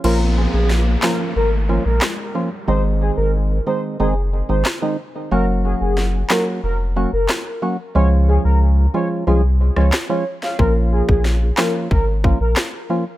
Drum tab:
CC |x---------------|----------------|----------------|----------------|
CP |------x-----x---|------------x---|------x-----x---|------------x---|
SD |----o-o-----o---|------------o---|----o-o-----o---|-----------ro--o|
BD |----------------|----------------|----------------|----------------|

CC |----------------|
CP |------x-----x---|
SD |----o-o-----o---|
BD |o--o----o-o-----|